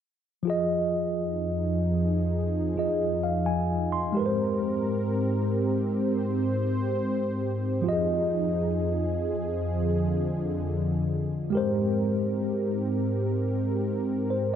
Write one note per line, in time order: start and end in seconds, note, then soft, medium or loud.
0.43 4.12 F2 medium
0.43 2.71 F3 medium
0.43 4.12 F3 medium
0.43 4.11 D#4 medium
0.43 2.72 F4 medium
0.43 4.12 G#4 medium
0.47 2.73 G#4 medium
0.47 2.75 D#5 medium
2.76 4.15 F3 medium
2.76 4.15 F4 medium
2.76 4.16 G#4 soft
2.76 4.16 D#5 medium
3.24 3.45 F5 medium
3.46 3.90 G#5 medium
3.92 4.36 C6 medium
4.12 7.81 G#2 medium
4.12 7.79 G#3 medium
4.12 7.81 C4 medium
4.12 7.80 G4 medium
4.12 7.81 G4 medium
4.12 5.98 A#4 medium
4.17 7.81 A#4 medium
4.17 4.24 B4 medium
4.26 7.86 C5 medium
6.00 7.83 C5 medium
7.82 11.50 F2 medium
7.82 11.48 F3 medium
7.82 11.50 F3 medium
7.82 9.67 D#4 medium
7.82 11.49 F4 medium
7.82 11.50 G#4 medium
7.86 7.92 G4 medium
7.86 11.52 D#5 medium
7.93 11.54 G#4 medium
9.68 11.51 D3 medium
11.50 14.56 G#2 medium
11.50 14.56 G#3 medium
11.50 14.56 C4 medium
11.50 14.56 G4 medium
11.50 14.56 A#4 medium
11.55 14.56 A#4 medium
11.55 14.28 C5 medium
14.30 14.52 C5 medium